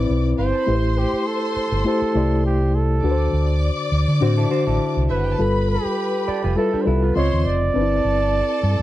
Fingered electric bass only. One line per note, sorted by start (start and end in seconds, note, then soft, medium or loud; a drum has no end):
0.09 0.32 B1 medium
0.38 0.51 G1 medium
0.68 1.04 A1 medium
1.13 muted fingered electric bass stroke soft
1.56 muted fingered electric bass stroke soft
1.72 1.82 G1 medium
2.02 muted fingered electric bass stroke soft
2.15 2.99 C2 medium
3.03 3.27 D2 medium
3.33 3.69 D2 medium
3.92 4.04 D2 medium
4.08 4.19 D3 medium
4.21 4.45 A2 medium
4.67 4.78 A1 medium
4.97 5.07 C2 medium
5.10 5.33 F#1 medium
5.40 5.75 G1 medium
5.85 muted fingered electric bass stroke soft
6.28 muted fingered electric bass stroke soft
6.44 6.54 F1 medium
6.74 muted fingered electric bass stroke soft
6.87 7.10 C2 medium
7.17 7.29 C#2 medium
7.33 7.43 D#2 medium
7.45 7.69 F1 medium
7.75 7.98 G1 medium
8.04 8.40 G1 medium
8.63 8.76 G2 medium